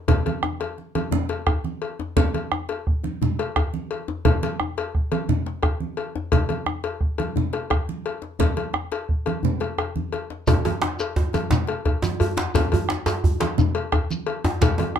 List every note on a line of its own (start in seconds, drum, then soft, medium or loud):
0.08 bombo rim soft
0.08 bombo low medium
0.08 cowbell medium
0.08 djembe slap soft
0.08 djembe bass medium
0.08 low conga medium
0.25 bombo rim soft
0.25 cowbell soft
0.25 djembe slap soft
0.25 high conga medium
0.43 bombo rim medium
0.43 djembe tone medium
0.43 high conga soft
0.60 bombo rim soft
0.60 cowbell soft
0.60 djembe slap medium
0.60 high conga soft
0.78 djembe slap soft
0.78 high conga soft
0.95 bombo rim soft
0.95 cowbell soft
0.95 djembe tone medium
0.95 high conga medium
1.11 bombo rim soft
1.11 high conga soft
1.11 djembe bass medium
1.11 low conga medium
1.29 cowbell soft
1.29 djembe slap medium
1.47 bombo rim medium
1.47 bombo low medium
1.47 cowbell soft
1.47 djembe tone medium
1.64 bombo rim soft
1.64 djembe slap soft
1.64 high conga soft
1.82 cowbell soft
1.82 djembe slap soft
1.99 djembe slap medium
1.99 djembe tone medium
2.17 bombo rim soft
2.17 bombo low medium
2.17 cowbell medium
2.17 high conga soft
2.17 djembe bass medium
2.17 low conga medium
2.34 cowbell soft
2.34 high conga soft
2.52 bombo rim medium
2.52 djembe tone medium
2.69 cowbell soft
2.69 djembe slap soft
2.87 bombo rim soft
2.87 bombo low loud
3.03 djembe tone medium
3.03 high conga medium
3.22 djembe bass medium
3.22 low conga medium
3.39 bombo rim soft
3.39 cowbell medium
3.39 djembe slap soft
3.56 bombo rim medium
3.56 bombo low medium
3.56 cowbell soft
3.56 djembe slap soft
3.56 djembe tone medium
3.74 djembe slap soft
3.74 high conga medium
3.91 cowbell soft
3.91 djembe slap soft
3.91 high conga soft
4.08 djembe slap medium
4.08 djembe tone medium
4.25 bombo rim soft
4.25 bombo low medium
4.25 cowbell medium
4.25 high conga soft
4.25 low conga medium
4.25 djembe bass medium
4.43 cowbell soft
4.43 high conga medium
4.60 bombo rim medium
4.60 djembe tone medium
4.78 cowbell medium
4.78 djembe slap medium
4.95 bombo rim soft
4.95 bombo low medium
5.12 cowbell medium
5.12 high conga medium
5.29 djembe bass medium
5.29 low conga medium
5.46 bombo rim soft
5.46 djembe slap medium
5.63 bombo rim medium
5.63 bombo low medium
5.63 cowbell soft
5.63 djembe slap soft
5.63 djembe tone medium
5.80 djembe slap soft
5.80 high conga soft
5.97 cowbell soft
5.97 djembe slap soft
5.97 high conga soft
6.15 djembe slap medium
6.15 djembe tone medium
6.32 bombo rim soft
6.32 bombo low medium
6.32 cowbell medium
6.32 high conga soft
6.32 djembe bass medium
6.32 low conga medium
6.49 cowbell soft
6.49 high conga soft
6.66 bombo rim medium
6.66 djembe tone medium
6.84 cowbell soft
6.84 djembe slap medium
7.01 bombo rim soft
7.01 bombo low medium
7.18 cowbell soft
7.18 djembe tone medium
7.18 high conga soft
7.36 djembe bass medium
7.36 low conga medium
7.53 bombo rim soft
7.53 cowbell soft
7.53 djembe slap medium
7.70 bombo rim medium
7.70 bombo low medium
7.70 cowbell soft
7.70 djembe slap soft
7.70 djembe tone medium
7.87 djembe slap soft
7.87 high conga soft
8.04 cowbell soft
8.04 djembe slap soft
8.04 high conga soft
8.22 djembe slap medium
8.39 bombo low medium
8.39 cowbell medium
8.39 high conga soft
8.39 djembe bass medium
8.39 low conga medium
8.57 cowbell soft
8.57 high conga soft
8.74 bombo rim medium
8.74 djembe slap soft
8.74 djembe tone medium
8.92 cowbell soft
8.92 djembe slap medium
9.09 bombo low medium
9.09 djembe slap soft
9.26 cowbell soft
9.26 djembe slap soft
9.26 djembe tone medium
9.26 high conga medium
9.43 djembe bass medium
9.43 low conga medium
9.60 bombo rim soft
9.60 cowbell soft
9.60 djembe slap soft
9.60 high conga soft
9.78 bombo rim medium
9.78 cowbell soft
9.78 djembe bass soft
9.96 high conga soft
9.96 djembe bass soft
10.12 cowbell soft
10.12 djembe slap soft
10.12 high conga soft
10.30 djembe slap medium
10.47 bombo rim soft
10.47 bombo low medium
10.47 cowbell medium
10.47 djembe tone loud
10.47 high conga soft
10.47 low conga medium
10.47 djembe bass medium
10.47 shekere medium
10.65 cowbell soft
10.65 djembe tone medium
10.65 high conga medium
10.82 bombo rim medium
10.82 djembe slap medium
10.82 djembe tone medium
10.99 cowbell medium
10.99 djembe slap medium
10.99 shekere soft
11.16 bombo rim soft
11.16 bombo low medium
11.16 djembe tone medium
11.33 cowbell medium
11.33 djembe tone medium
11.33 high conga medium
11.33 djembe tone medium
11.33 shekere soft
11.50 djembe slap medium
11.50 djembe bass medium
11.50 low conga medium
11.50 shekere medium
11.67 bombo rim soft
11.67 cowbell medium
11.67 djembe slap medium
11.85 bombo low medium
11.85 cowbell soft
11.85 djembe tone medium
12.02 djembe slap soft
12.02 djembe tone loud
12.02 high conga medium
12.02 shekere soft
12.20 cowbell medium
12.20 djembe slap soft
12.20 high conga soft
12.20 djembe bass medium
12.37 djembe slap medium
12.37 djembe tone medium
12.37 shekere soft
12.55 bombo rim soft
12.55 bombo low medium
12.55 cowbell medium
12.55 high conga soft
12.55 djembe tone loud
12.55 djembe bass medium
12.55 low conga medium
12.55 shekere medium
12.72 cowbell medium
12.72 high conga medium
12.72 djembe bass medium
12.89 bombo rim medium
12.89 djembe slap medium
12.89 djembe tone medium
13.06 cowbell medium
13.06 djembe slap medium
13.06 djembe tone loud
13.06 shekere soft
13.24 bombo rim soft
13.24 bombo low medium
13.24 djembe bass medium
13.40 cowbell medium
13.40 djembe slap medium
13.40 high conga medium
13.40 djembe tone medium
13.40 shekere soft
13.58 low conga medium
13.58 djembe bass medium
13.58 shekere medium
13.75 bombo rim soft
13.75 cowbell medium
13.92 bombo rim medium
13.92 bombo low medium
13.92 cowbell medium
13.92 djembe slap soft
13.92 djembe tone medium
14.10 djembe slap soft
14.10 high conga medium
14.10 shekere soft
14.27 cowbell medium
14.27 djembe slap soft
14.27 high conga soft
14.44 djembe slap medium
14.44 djembe tone medium
14.44 djembe tone loud
14.44 shekere soft
14.61 bombo rim soft
14.61 bombo low medium
14.61 cowbell medium
14.61 djembe slap medium
14.61 high conga soft
14.61 low conga medium
14.61 djembe bass medium
14.61 shekere medium
14.78 cowbell medium
14.78 djembe tone medium
14.78 high conga medium
14.96 bombo rim medium
14.96 djembe tone medium